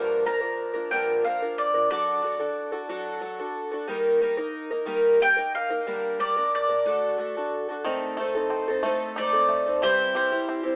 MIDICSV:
0, 0, Header, 1, 4, 480
1, 0, Start_track
1, 0, Key_signature, -2, "minor"
1, 0, Tempo, 660793
1, 1385, Time_signature, 6, 3, 24, 8
1, 7814, End_track
2, 0, Start_track
2, 0, Title_t, "Mandolin"
2, 0, Program_c, 0, 25
2, 191, Note_on_c, 0, 82, 66
2, 654, Note_off_c, 0, 82, 0
2, 661, Note_on_c, 0, 79, 66
2, 896, Note_off_c, 0, 79, 0
2, 903, Note_on_c, 0, 77, 69
2, 1137, Note_off_c, 0, 77, 0
2, 1148, Note_on_c, 0, 74, 69
2, 1376, Note_off_c, 0, 74, 0
2, 1385, Note_on_c, 0, 74, 69
2, 2316, Note_off_c, 0, 74, 0
2, 3792, Note_on_c, 0, 79, 91
2, 4021, Note_off_c, 0, 79, 0
2, 4029, Note_on_c, 0, 77, 70
2, 4493, Note_off_c, 0, 77, 0
2, 4504, Note_on_c, 0, 74, 71
2, 4737, Note_off_c, 0, 74, 0
2, 4756, Note_on_c, 0, 74, 71
2, 6160, Note_off_c, 0, 74, 0
2, 6667, Note_on_c, 0, 74, 84
2, 7129, Note_off_c, 0, 74, 0
2, 7141, Note_on_c, 0, 72, 80
2, 7374, Note_off_c, 0, 72, 0
2, 7382, Note_on_c, 0, 72, 67
2, 7814, Note_off_c, 0, 72, 0
2, 7814, End_track
3, 0, Start_track
3, 0, Title_t, "Twelve-string acoustic guitar"
3, 0, Program_c, 1, 25
3, 0, Note_on_c, 1, 43, 66
3, 0, Note_on_c, 1, 50, 67
3, 0, Note_on_c, 1, 53, 72
3, 0, Note_on_c, 1, 58, 78
3, 0, Note_on_c, 1, 62, 76
3, 0, Note_on_c, 1, 70, 75
3, 174, Note_off_c, 1, 53, 0
3, 176, Note_off_c, 1, 58, 0
3, 179, Note_off_c, 1, 62, 0
3, 183, Note_on_c, 1, 53, 53
3, 184, Note_off_c, 1, 43, 0
3, 184, Note_off_c, 1, 70, 0
3, 185, Note_on_c, 1, 58, 50
3, 187, Note_off_c, 1, 50, 0
3, 187, Note_on_c, 1, 62, 49
3, 193, Note_on_c, 1, 70, 49
3, 290, Note_off_c, 1, 70, 0
3, 293, Note_off_c, 1, 62, 0
3, 296, Note_off_c, 1, 58, 0
3, 298, Note_on_c, 1, 70, 48
3, 299, Note_off_c, 1, 53, 0
3, 302, Note_on_c, 1, 62, 41
3, 305, Note_on_c, 1, 58, 38
3, 308, Note_on_c, 1, 53, 38
3, 525, Note_off_c, 1, 70, 0
3, 532, Note_off_c, 1, 62, 0
3, 533, Note_on_c, 1, 70, 41
3, 535, Note_off_c, 1, 58, 0
3, 541, Note_off_c, 1, 53, 0
3, 541, Note_on_c, 1, 62, 40
3, 543, Note_on_c, 1, 58, 39
3, 549, Note_on_c, 1, 53, 37
3, 659, Note_off_c, 1, 70, 0
3, 659, Note_on_c, 1, 43, 67
3, 660, Note_off_c, 1, 62, 0
3, 661, Note_off_c, 1, 53, 0
3, 661, Note_off_c, 1, 58, 0
3, 666, Note_on_c, 1, 50, 63
3, 668, Note_on_c, 1, 62, 67
3, 669, Note_on_c, 1, 53, 60
3, 669, Note_on_c, 1, 58, 69
3, 672, Note_on_c, 1, 70, 68
3, 899, Note_off_c, 1, 53, 0
3, 902, Note_off_c, 1, 43, 0
3, 902, Note_off_c, 1, 58, 0
3, 903, Note_off_c, 1, 62, 0
3, 905, Note_off_c, 1, 50, 0
3, 908, Note_off_c, 1, 70, 0
3, 908, Note_on_c, 1, 53, 47
3, 911, Note_on_c, 1, 58, 45
3, 912, Note_on_c, 1, 62, 52
3, 924, Note_on_c, 1, 70, 53
3, 1024, Note_off_c, 1, 62, 0
3, 1025, Note_off_c, 1, 70, 0
3, 1026, Note_off_c, 1, 53, 0
3, 1027, Note_off_c, 1, 58, 0
3, 1033, Note_on_c, 1, 62, 42
3, 1033, Note_on_c, 1, 70, 41
3, 1038, Note_on_c, 1, 58, 36
3, 1044, Note_on_c, 1, 53, 36
3, 1256, Note_off_c, 1, 70, 0
3, 1260, Note_off_c, 1, 62, 0
3, 1263, Note_off_c, 1, 58, 0
3, 1265, Note_on_c, 1, 70, 43
3, 1268, Note_on_c, 1, 62, 43
3, 1272, Note_on_c, 1, 58, 39
3, 1274, Note_off_c, 1, 53, 0
3, 1282, Note_on_c, 1, 53, 38
3, 1378, Note_off_c, 1, 62, 0
3, 1380, Note_off_c, 1, 53, 0
3, 1383, Note_on_c, 1, 54, 64
3, 1384, Note_off_c, 1, 58, 0
3, 1385, Note_off_c, 1, 70, 0
3, 1387, Note_on_c, 1, 62, 64
3, 1390, Note_on_c, 1, 66, 59
3, 1394, Note_on_c, 1, 69, 69
3, 1605, Note_off_c, 1, 54, 0
3, 1611, Note_off_c, 1, 62, 0
3, 1614, Note_on_c, 1, 54, 50
3, 1615, Note_off_c, 1, 66, 0
3, 1620, Note_off_c, 1, 69, 0
3, 1620, Note_on_c, 1, 62, 53
3, 1624, Note_on_c, 1, 66, 53
3, 1628, Note_on_c, 1, 69, 57
3, 1730, Note_off_c, 1, 69, 0
3, 1735, Note_off_c, 1, 66, 0
3, 1739, Note_off_c, 1, 54, 0
3, 1739, Note_on_c, 1, 69, 46
3, 1742, Note_off_c, 1, 62, 0
3, 1744, Note_on_c, 1, 66, 45
3, 1750, Note_on_c, 1, 62, 43
3, 1966, Note_off_c, 1, 69, 0
3, 1970, Note_off_c, 1, 66, 0
3, 1974, Note_on_c, 1, 69, 56
3, 1975, Note_off_c, 1, 62, 0
3, 1979, Note_on_c, 1, 66, 46
3, 1983, Note_on_c, 1, 62, 46
3, 2092, Note_off_c, 1, 62, 0
3, 2094, Note_off_c, 1, 66, 0
3, 2099, Note_on_c, 1, 54, 70
3, 2100, Note_off_c, 1, 69, 0
3, 2100, Note_on_c, 1, 62, 75
3, 2102, Note_on_c, 1, 66, 76
3, 2110, Note_on_c, 1, 69, 87
3, 2322, Note_off_c, 1, 54, 0
3, 2327, Note_off_c, 1, 62, 0
3, 2329, Note_off_c, 1, 66, 0
3, 2331, Note_on_c, 1, 54, 54
3, 2333, Note_off_c, 1, 69, 0
3, 2336, Note_on_c, 1, 62, 50
3, 2338, Note_on_c, 1, 66, 59
3, 2342, Note_on_c, 1, 69, 59
3, 2457, Note_off_c, 1, 69, 0
3, 2458, Note_off_c, 1, 54, 0
3, 2460, Note_off_c, 1, 62, 0
3, 2462, Note_off_c, 1, 66, 0
3, 2466, Note_on_c, 1, 69, 51
3, 2471, Note_on_c, 1, 66, 47
3, 2475, Note_on_c, 1, 62, 41
3, 2690, Note_off_c, 1, 69, 0
3, 2698, Note_on_c, 1, 69, 51
3, 2700, Note_off_c, 1, 66, 0
3, 2705, Note_off_c, 1, 62, 0
3, 2709, Note_on_c, 1, 66, 46
3, 2714, Note_on_c, 1, 62, 43
3, 2815, Note_on_c, 1, 51, 68
3, 2815, Note_on_c, 1, 55, 82
3, 2819, Note_off_c, 1, 62, 0
3, 2820, Note_off_c, 1, 66, 0
3, 2822, Note_off_c, 1, 69, 0
3, 2822, Note_on_c, 1, 58, 69
3, 2823, Note_on_c, 1, 63, 79
3, 2828, Note_on_c, 1, 70, 75
3, 3048, Note_off_c, 1, 55, 0
3, 3050, Note_off_c, 1, 58, 0
3, 3055, Note_off_c, 1, 63, 0
3, 3057, Note_on_c, 1, 55, 61
3, 3059, Note_on_c, 1, 58, 60
3, 3060, Note_off_c, 1, 51, 0
3, 3064, Note_on_c, 1, 63, 63
3, 3065, Note_off_c, 1, 70, 0
3, 3073, Note_on_c, 1, 70, 66
3, 3167, Note_off_c, 1, 70, 0
3, 3173, Note_off_c, 1, 63, 0
3, 3176, Note_on_c, 1, 70, 56
3, 3178, Note_off_c, 1, 58, 0
3, 3181, Note_off_c, 1, 55, 0
3, 3182, Note_on_c, 1, 63, 56
3, 3187, Note_on_c, 1, 58, 43
3, 3409, Note_off_c, 1, 70, 0
3, 3415, Note_off_c, 1, 63, 0
3, 3418, Note_on_c, 1, 70, 54
3, 3424, Note_on_c, 1, 63, 49
3, 3426, Note_off_c, 1, 58, 0
3, 3433, Note_on_c, 1, 58, 44
3, 3524, Note_off_c, 1, 63, 0
3, 3526, Note_off_c, 1, 58, 0
3, 3527, Note_on_c, 1, 51, 76
3, 3529, Note_off_c, 1, 70, 0
3, 3532, Note_on_c, 1, 55, 71
3, 3533, Note_on_c, 1, 63, 84
3, 3534, Note_on_c, 1, 58, 79
3, 3537, Note_on_c, 1, 70, 86
3, 3764, Note_off_c, 1, 55, 0
3, 3770, Note_off_c, 1, 58, 0
3, 3773, Note_on_c, 1, 55, 47
3, 3776, Note_off_c, 1, 51, 0
3, 3776, Note_off_c, 1, 70, 0
3, 3779, Note_off_c, 1, 63, 0
3, 3779, Note_on_c, 1, 58, 53
3, 3785, Note_on_c, 1, 70, 58
3, 3788, Note_on_c, 1, 63, 52
3, 3889, Note_off_c, 1, 70, 0
3, 3897, Note_off_c, 1, 63, 0
3, 3897, Note_on_c, 1, 70, 47
3, 3899, Note_off_c, 1, 55, 0
3, 3902, Note_off_c, 1, 58, 0
3, 3906, Note_on_c, 1, 63, 47
3, 3912, Note_on_c, 1, 58, 35
3, 4132, Note_off_c, 1, 70, 0
3, 4136, Note_off_c, 1, 63, 0
3, 4141, Note_on_c, 1, 70, 47
3, 4144, Note_off_c, 1, 58, 0
3, 4144, Note_on_c, 1, 63, 46
3, 4153, Note_on_c, 1, 58, 38
3, 4255, Note_off_c, 1, 58, 0
3, 4259, Note_off_c, 1, 70, 0
3, 4260, Note_off_c, 1, 63, 0
3, 4261, Note_on_c, 1, 55, 59
3, 4262, Note_on_c, 1, 50, 63
3, 4263, Note_on_c, 1, 58, 70
3, 4263, Note_on_c, 1, 62, 63
3, 4268, Note_on_c, 1, 70, 66
3, 4485, Note_off_c, 1, 55, 0
3, 4490, Note_off_c, 1, 58, 0
3, 4494, Note_off_c, 1, 62, 0
3, 4494, Note_on_c, 1, 55, 58
3, 4499, Note_on_c, 1, 58, 57
3, 4501, Note_off_c, 1, 70, 0
3, 4502, Note_on_c, 1, 62, 52
3, 4503, Note_off_c, 1, 50, 0
3, 4510, Note_on_c, 1, 70, 58
3, 4615, Note_off_c, 1, 70, 0
3, 4619, Note_off_c, 1, 55, 0
3, 4622, Note_off_c, 1, 58, 0
3, 4623, Note_off_c, 1, 62, 0
3, 4624, Note_on_c, 1, 70, 48
3, 4632, Note_on_c, 1, 62, 40
3, 4636, Note_on_c, 1, 58, 41
3, 4850, Note_off_c, 1, 70, 0
3, 4859, Note_on_c, 1, 70, 47
3, 4860, Note_off_c, 1, 62, 0
3, 4863, Note_off_c, 1, 58, 0
3, 4869, Note_on_c, 1, 62, 41
3, 4872, Note_on_c, 1, 58, 39
3, 4973, Note_off_c, 1, 62, 0
3, 4979, Note_off_c, 1, 58, 0
3, 4979, Note_on_c, 1, 57, 74
3, 4981, Note_on_c, 1, 50, 64
3, 4982, Note_off_c, 1, 70, 0
3, 4982, Note_on_c, 1, 62, 69
3, 4985, Note_on_c, 1, 66, 69
3, 4990, Note_on_c, 1, 69, 69
3, 5204, Note_off_c, 1, 57, 0
3, 5212, Note_on_c, 1, 57, 50
3, 5213, Note_off_c, 1, 62, 0
3, 5215, Note_off_c, 1, 66, 0
3, 5222, Note_on_c, 1, 62, 54
3, 5223, Note_off_c, 1, 50, 0
3, 5223, Note_off_c, 1, 69, 0
3, 5224, Note_on_c, 1, 66, 51
3, 5231, Note_on_c, 1, 69, 49
3, 5338, Note_off_c, 1, 57, 0
3, 5342, Note_off_c, 1, 69, 0
3, 5343, Note_off_c, 1, 62, 0
3, 5344, Note_off_c, 1, 66, 0
3, 5350, Note_on_c, 1, 69, 48
3, 5356, Note_on_c, 1, 66, 42
3, 5363, Note_on_c, 1, 62, 40
3, 5573, Note_off_c, 1, 69, 0
3, 5582, Note_on_c, 1, 69, 47
3, 5583, Note_off_c, 1, 66, 0
3, 5592, Note_on_c, 1, 66, 47
3, 5593, Note_off_c, 1, 62, 0
3, 5602, Note_on_c, 1, 62, 40
3, 5699, Note_off_c, 1, 62, 0
3, 5699, Note_off_c, 1, 66, 0
3, 5699, Note_off_c, 1, 69, 0
3, 5702, Note_on_c, 1, 60, 69
3, 5702, Note_on_c, 1, 63, 83
3, 5704, Note_on_c, 1, 57, 72
3, 5708, Note_on_c, 1, 69, 84
3, 5937, Note_off_c, 1, 57, 0
3, 5943, Note_off_c, 1, 60, 0
3, 5943, Note_off_c, 1, 63, 0
3, 5946, Note_off_c, 1, 69, 0
3, 5946, Note_on_c, 1, 57, 61
3, 5953, Note_on_c, 1, 60, 53
3, 5954, Note_on_c, 1, 63, 59
3, 5960, Note_on_c, 1, 69, 64
3, 6055, Note_off_c, 1, 69, 0
3, 6064, Note_off_c, 1, 63, 0
3, 6064, Note_on_c, 1, 69, 54
3, 6065, Note_off_c, 1, 57, 0
3, 6068, Note_off_c, 1, 60, 0
3, 6072, Note_on_c, 1, 63, 53
3, 6078, Note_on_c, 1, 60, 40
3, 6296, Note_off_c, 1, 69, 0
3, 6303, Note_off_c, 1, 63, 0
3, 6304, Note_on_c, 1, 69, 61
3, 6307, Note_off_c, 1, 60, 0
3, 6311, Note_on_c, 1, 63, 45
3, 6316, Note_on_c, 1, 60, 48
3, 6420, Note_off_c, 1, 60, 0
3, 6420, Note_off_c, 1, 63, 0
3, 6421, Note_on_c, 1, 57, 74
3, 6423, Note_off_c, 1, 69, 0
3, 6428, Note_on_c, 1, 63, 76
3, 6429, Note_on_c, 1, 60, 82
3, 6432, Note_on_c, 1, 69, 84
3, 6661, Note_off_c, 1, 57, 0
3, 6665, Note_off_c, 1, 60, 0
3, 6665, Note_off_c, 1, 63, 0
3, 6667, Note_off_c, 1, 69, 0
3, 6671, Note_on_c, 1, 57, 57
3, 6674, Note_on_c, 1, 60, 54
3, 6679, Note_on_c, 1, 63, 58
3, 6686, Note_on_c, 1, 69, 54
3, 6767, Note_off_c, 1, 69, 0
3, 6776, Note_off_c, 1, 63, 0
3, 6776, Note_on_c, 1, 69, 49
3, 6780, Note_off_c, 1, 60, 0
3, 6785, Note_on_c, 1, 63, 38
3, 6786, Note_off_c, 1, 57, 0
3, 6789, Note_on_c, 1, 60, 36
3, 7007, Note_off_c, 1, 69, 0
3, 7016, Note_on_c, 1, 69, 50
3, 7021, Note_off_c, 1, 63, 0
3, 7023, Note_off_c, 1, 60, 0
3, 7030, Note_on_c, 1, 63, 47
3, 7032, Note_on_c, 1, 60, 40
3, 7137, Note_off_c, 1, 60, 0
3, 7137, Note_on_c, 1, 48, 67
3, 7139, Note_off_c, 1, 69, 0
3, 7140, Note_off_c, 1, 63, 0
3, 7140, Note_on_c, 1, 55, 74
3, 7143, Note_on_c, 1, 64, 69
3, 7146, Note_on_c, 1, 60, 65
3, 7151, Note_on_c, 1, 67, 77
3, 7368, Note_off_c, 1, 55, 0
3, 7373, Note_off_c, 1, 60, 0
3, 7376, Note_off_c, 1, 64, 0
3, 7377, Note_on_c, 1, 55, 50
3, 7379, Note_off_c, 1, 48, 0
3, 7381, Note_on_c, 1, 60, 55
3, 7383, Note_off_c, 1, 67, 0
3, 7384, Note_on_c, 1, 64, 56
3, 7392, Note_on_c, 1, 67, 64
3, 7484, Note_off_c, 1, 67, 0
3, 7486, Note_off_c, 1, 64, 0
3, 7492, Note_on_c, 1, 67, 50
3, 7494, Note_off_c, 1, 60, 0
3, 7495, Note_on_c, 1, 64, 48
3, 7499, Note_off_c, 1, 55, 0
3, 7503, Note_on_c, 1, 60, 39
3, 7714, Note_off_c, 1, 67, 0
3, 7719, Note_off_c, 1, 64, 0
3, 7722, Note_on_c, 1, 67, 53
3, 7727, Note_off_c, 1, 60, 0
3, 7728, Note_on_c, 1, 64, 44
3, 7736, Note_on_c, 1, 60, 46
3, 7814, Note_off_c, 1, 60, 0
3, 7814, Note_off_c, 1, 64, 0
3, 7814, Note_off_c, 1, 67, 0
3, 7814, End_track
4, 0, Start_track
4, 0, Title_t, "Five-string banjo"
4, 0, Program_c, 2, 105
4, 5699, Note_on_c, 2, 51, 72
4, 5934, Note_on_c, 2, 57, 47
4, 6175, Note_on_c, 2, 60, 50
4, 6404, Note_off_c, 2, 57, 0
4, 6412, Note_on_c, 2, 57, 56
4, 6654, Note_on_c, 2, 63, 62
4, 6881, Note_off_c, 2, 57, 0
4, 6890, Note_on_c, 2, 57, 50
4, 7131, Note_off_c, 2, 51, 0
4, 7133, Note_on_c, 2, 52, 72
4, 7184, Note_off_c, 2, 57, 0
4, 7186, Note_off_c, 2, 63, 0
4, 7192, Note_off_c, 2, 60, 0
4, 7373, Note_on_c, 2, 55, 52
4, 7618, Note_on_c, 2, 60, 50
4, 7814, Note_off_c, 2, 52, 0
4, 7814, Note_off_c, 2, 55, 0
4, 7814, Note_off_c, 2, 60, 0
4, 7814, End_track
0, 0, End_of_file